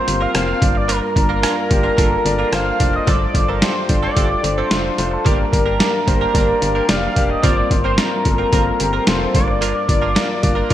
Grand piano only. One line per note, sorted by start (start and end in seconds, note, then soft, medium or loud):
0.00 0.62 G2 medium
0.00 0.07 A#3 medium
0.00 0.07 C4 medium
0.00 0.08 F4 medium
0.00 0.63 A#4 medium
0.00 0.36 C5 medium
0.07 0.24 A#3 medium
0.07 0.25 C4 medium
0.07 0.25 F4 medium
0.07 0.25 G4 medium
0.34 0.52 A#3 medium
0.34 0.52 C4 medium
0.34 0.52 F4 medium
0.34 0.52 C5 loud
0.61 1.40 G2 medium
0.61 1.05 A#3 medium
0.61 1.05 D4 medium
0.61 1.05 F4 medium
0.61 1.06 D5 medium
1.15 1.33 A#3 medium
1.15 1.33 D4 medium
1.15 1.34 F4 medium
1.15 1.34 D5 medium
1.43 1.61 A#3 medium
1.43 1.61 D4 medium
1.43 1.61 F4 medium
1.43 1.61 F5 medium
1.70 1.88 A#3 medium
1.70 1.88 D4 medium
1.70 1.88 F4 medium
1.70 1.89 G4 medium
1.98 2.15 A#3 medium
1.98 2.16 D4 medium
1.98 2.16 F4 medium
1.98 2.16 A4 medium
2.25 2.43 A#3 medium
2.25 2.43 D4 medium
2.25 2.43 F4 medium
2.25 2.43 D5 medium
2.52 2.70 A#3 medium
2.52 2.70 D4 medium
2.52 2.70 F4 medium
2.52 2.70 C5 loud
2.79 2.97 A#3 medium
2.79 2.97 D4 medium
2.79 2.97 F4 medium
2.79 2.98 D5 medium
3.06 3.85 G2 medium
3.06 3.24 A3 medium
3.06 3.24 D4 medium
3.06 3.25 F4 medium
3.06 3.25 C5 medium
3.34 3.52 A3 medium
3.34 3.52 D4 medium
3.34 3.52 F4 medium
3.34 3.52 C5 medium
3.61 3.79 A3 medium
3.61 3.79 D4 medium
3.61 3.79 F4 medium
3.61 3.79 G4 medium
3.88 4.06 A3 medium
3.88 4.06 D4 medium
3.88 4.06 F4 medium
3.88 4.07 D5 medium
4.15 4.33 A3 medium
4.15 4.33 D4 medium
4.15 4.34 F4 medium
4.15 4.34 G4 medium
4.43 4.61 A3 medium
4.43 4.61 D4 medium
4.43 4.61 F4 medium
4.43 4.61 C5 medium
4.70 4.88 A3 medium
4.70 4.88 D4 medium
4.70 4.88 F4 medium
4.70 4.89 A4 medium
4.98 5.16 A3 medium
4.98 5.16 D4 medium
4.98 5.16 F4 medium
4.98 5.16 C5 medium
5.25 6.03 G2 medium
5.25 5.43 A#3 medium
5.25 5.43 D4 medium
5.25 5.43 G4 medium
5.25 5.43 D5 loud
5.52 5.70 A#3 medium
5.52 5.70 D4 medium
5.52 5.70 G4 medium
5.52 5.70 A#4 medium
5.79 5.97 A#3 medium
5.79 5.97 D4 medium
5.79 5.97 G4 medium
5.79 5.98 D5 medium
6.06 6.24 A#3 medium
6.06 6.24 D4 medium
6.06 6.25 G4 medium
6.06 6.25 C5 medium
6.33 6.51 A#3 medium
6.33 6.52 D4 medium
6.33 6.52 G4 medium
6.33 6.52 D5 medium
6.61 6.79 A#3 medium
6.61 6.79 D4 medium
6.61 6.79 G4 medium
6.61 6.79 D5 medium
6.87 7.06 A#3 medium
6.87 7.06 D4 medium
6.87 7.06 G4 medium
6.87 7.06 D5 loud
7.15 7.33 A#3 medium
7.15 7.34 D4 medium
7.15 7.34 G4 medium
7.15 7.34 D5 loud
7.42 8.21 G2 medium
7.42 7.60 A#3 medium
7.42 7.61 C4 medium
7.42 7.61 F4 medium
7.42 7.61 C5 loud
7.71 7.88 A#3 medium
7.71 7.89 C4 medium
7.71 7.89 F4 medium
7.71 7.89 C5 medium
7.98 8.15 A#3 medium
7.98 8.16 C4 medium
7.98 8.16 F4 medium
7.98 8.16 D5 medium
8.25 8.43 A#3 medium
8.25 8.43 C4 medium
8.25 8.43 F4 medium
8.25 8.43 A4 medium
8.53 8.70 A#3 medium
8.53 8.70 C4 medium
8.53 8.71 F4 medium
8.53 8.71 C5 medium
8.80 8.97 A#3 medium
8.80 8.98 C4 medium
8.80 8.98 F4 medium
8.80 8.98 G4 medium
9.07 9.25 A#3 medium
9.07 9.25 C4 medium
9.07 9.25 F4 medium
9.07 9.25 A4 loud
9.34 10.13 G2 medium
9.34 9.78 A#3 medium
9.34 9.78 D4 medium
9.34 9.78 F4 medium
9.34 9.79 D5 medium
9.88 10.06 A#3 medium
9.88 10.06 D4 medium
9.88 10.07 F4 medium
9.88 10.07 D5 medium
10.15 10.33 A#3 medium
10.15 10.33 D4 medium
10.15 10.34 F4 medium
10.15 10.34 D5 medium
10.42 10.60 A#3 medium
10.42 10.60 D4 medium
10.42 10.61 F4 medium
10.42 10.61 D5 medium
10.70 10.74 A#3 medium
10.70 10.74 D4 medium